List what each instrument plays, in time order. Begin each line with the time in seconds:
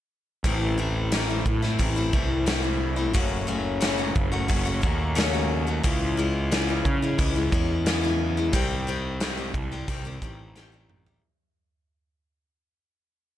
0.44 picked electric bass A1, steel-string acoustic guitar A2 E3 A3 C4 E4, kick, open hi-hat
0.78 steel-string acoustic guitar E3 A3 C4 E4
1.12 steel-string acoustic guitar A2 E3 A3 C4 E4, snare, open hi-hat
1.30 steel-string acoustic guitar A3 C4 E4
1.46 picked electric bass A2, muted steel-string acoustic guitar stroke, kick
1.62 steel-string acoustic guitar A3 C4 E4, snare
1.79 picked electric bass A1, steel-string acoustic guitar E3 A3 C4 E4, kick, open hi-hat
1.96 steel-string acoustic guitar A3 C4 E4
2.13 picked electric bass C2, steel-string acoustic guitar E3 A3 C4 E4, kick
2.46 steel-string acoustic guitar A2 E3 A3 C4 E4, snare, open hi-hat
2.63 steel-string acoustic guitar A3 C4 E4
2.96 steel-string acoustic guitar A3 C4 E4
3.13 picked electric bass F#1, steel-string acoustic guitar F#2 C#3 F#3 A3 C#4 F#4, kick, open hi-hat
3.47 steel-string acoustic guitar F#3 A3 C#4 F#4
3.81 steel-string acoustic guitar F#2 C#3 F#3 A3 C#4 F#4, snare, open hi-hat
3.98 steel-string acoustic guitar F#3 A3 C#4 F#4
4.15 picked electric bass F#1, muted steel-string acoustic guitar stroke, kick
4.32 steel-string acoustic guitar F#3 A3 C#4 F#4
4.48 picked electric bass F#1, steel-string acoustic guitar F#3 A3 C#4 F#4, kick, open hi-hat
4.65 steel-string acoustic guitar F#3 A3 C#4 F#4
4.82 picked electric bass D#2, steel-string acoustic guitar F#3 A3 C#4 F#4, kick
5.15 steel-string acoustic guitar F#2 C#3 F#3 A3 C#4 F#4, snare, open hi-hat
5.33 steel-string acoustic guitar F#3 A3 C#4 F#4
5.67 steel-string acoustic guitar F#3 A3 C#4 F#4
5.83 picked electric bass C#2, steel-string acoustic guitar C#3 E3 G#3 C#4 E4, kick, open hi-hat
6.17 steel-string acoustic guitar E3 G#3 C#4 E4
6.51 steel-string acoustic guitar C#3 E3 G#3 C#4 E4, snare, open hi-hat
6.68 steel-string acoustic guitar G#3 C#4 E4
6.85 picked electric bass C#3, muted steel-string acoustic guitar stroke, kick
7.02 steel-string acoustic guitar G#3 C#4 E4
7.18 picked electric bass C#2, steel-string acoustic guitar E3 G#3 C#4 E4, kick, open hi-hat
7.35 steel-string acoustic guitar G#3 C#4 E4
7.52 picked electric bass E2, steel-string acoustic guitar E3 G#3 C#4 E4, kick
7.86 steel-string acoustic guitar C#3 E3 G#3 C#4 E4, snare, open hi-hat
8.03 steel-string acoustic guitar G#3 C#4 E4
8.37 steel-string acoustic guitar G#3 C#4 E4
8.53 picked electric bass C2, steel-string acoustic guitar C3 D#3 G3 C4 G4, kick, open hi-hat
8.87 steel-string acoustic guitar D#3 G3 C4 G4
9.20 steel-string acoustic guitar C3 D#3 G3 C4 G4, snare, open hi-hat
9.37 steel-string acoustic guitar G3 C4 G4
9.54 picked electric bass C2, muted steel-string acoustic guitar stroke, kick
9.72 steel-string acoustic guitar G3 C4 G4
9.88 picked electric bass C2, steel-string acoustic guitar D#3 G3 C4 G4, kick, open hi-hat
10.05 steel-string acoustic guitar G3 C4 G4
10.22 picked electric bass A1, steel-string acoustic guitar D#3 G3 C4 G4, kick
10.56 steel-string acoustic guitar C3 D#3 G3 C4 G4, snare
10.72 steel-string acoustic guitar G3 C4 G4
10.89 mid tom
11.06 steel-string acoustic guitar G3 C4 G4, floor tom